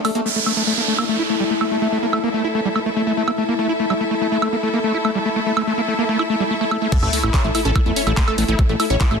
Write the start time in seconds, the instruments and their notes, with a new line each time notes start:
Already playing: ambient pad A3 D4
0.05 supersaw synth A3, acid bass A3, open hi-hat, high woodblock
0.15 supersaw synth A3, acid bass A#3, closed hi-hat
0.26 ambient pad A3 E4, acid bass A3, string section E4, crash, downlifter
0.36 acid bass A3
0.46 acid bass A3, high woodblock
0.57 acid bass A3
0.67 acid bass A3
0.76 acid bass A#3, string section A4
0.88 acid bass A3
0.99 acid bass A#3, high woodblock
1.09 acid bass A3
1.19 acid bass E4
1.30 acid bass A3
1.40 acid bass G3
1.51 acid bass A3
1.61 acid bass A3, high woodblock
1.67 string section E5
1.71 acid bass A3
1.82 acid bass A3
1.92 acid bass A3
2.03 acid bass A#3
2.13 acid bass A3, high woodblock
2.24 acid bass A#3
2.34 acid bass A3
2.44 acid bass E4
2.55 acid bass A3
2.65 acid bass G3
2.76 acid bass A3, high woodblock
2.86 acid bass A3
2.96 acid bass A3
3.07 acid bass A3
3.17 acid bass A3
3.28 acid bass A#3, high woodblock
3.38 acid bass A3
3.49 acid bass A#3
3.59 acid bass A3
3.69 acid bass E4
3.80 acid bass A3
3.90 acid bass G3, high woodblock
4.01 acid bass A3
4.11 acid bass A3
4.21 acid bass A3
4.32 acid bass A3
4.42 acid bass A3, high woodblock
4.53 acid bass A#3
4.63 acid bass A3
4.74 acid bass A#3
4.84 acid bass A3
4.94 acid bass E4
5.05 acid bass A3, high woodblock
5.15 acid bass G3
5.26 acid bass A3
5.36 acid bass A3
5.46 acid bass A3
5.57 acid bass A3, high woodblock
5.67 acid bass A3
5.78 acid bass A#3
5.88 acid bass A3
5.99 acid bass A#3
6.09 acid bass A3
6.19 acid bass E4, high woodblock
6.30 acid bass A3
6.40 acid bass G3
6.51 acid bass A3
6.61 acid bass A3
6.71 acid bass A3, high woodblock
6.82 acid bass A3
6.92 acid bass A3, ambient pad A3 E4, supersaw synth A4, kick, closed hi-hat, crash, sub drop
7.03 analog synth bass A1, acid bass A3, supersaw synth A3, closed hi-hat, high woodblock
7.13 acid bass A3, supersaw synth A3, open hi-hat
7.23 analog synth bass A1, supersaw synth A3, acid bass E4, closed hi-hat, high woodblock
7.34 acid bass A3, supersaw synth C#5, kick, clap, closed hi-hat
7.44 analog synth bass A1, acid bass A3, supersaw synth A3, closed hi-hat
7.55 supersaw synth A3, acid bass E4, open hi-hat, high woodblock
7.65 analog synth bass A1, acid bass C#4, supersaw synth A4, closed hi-hat
7.76 supersaw synth A3, acid bass E4, kick, closed hi-hat, high woodblock
7.86 analog synth bass E2, acid bass A3, supersaw synth A3, closed hi-hat
7.96 acid bass C#4, supersaw synth C#5, open hi-hat
8.07 analog synth bass A1, supersaw synth A3, acid bass E4, closed hi-hat, high woodblock
8.17 acid bass A3, supersaw synth A3, kick, clap, closed hi-hat
8.28 acid bass A3, supersaw synth A4, closed hi-hat, high woodblock
8.38 analog synth bass A1, acid bass A3, supersaw synth A3, open hi-hat
8.48 analog synth bass A1, supersaw synth A3, acid bass E4, closed hi-hat
8.59 acid bass A3, kick, closed hi-hat, high woodblock
8.69 analog synth bass A1, acid bass A3, supersaw synth A3, closed hi-hat
8.80 supersaw synth A3, acid bass E4, open hi-hat, high woodblock
8.90 analog synth bass A1, acid bass C#4, supersaw synth C#5, closed hi-hat
9.01 supersaw synth A3, acid bass E4, kick, clap, closed hi-hat
9.11 analog synth bass A1, acid bass A3, supersaw synth A3, closed hi-hat, high woodblock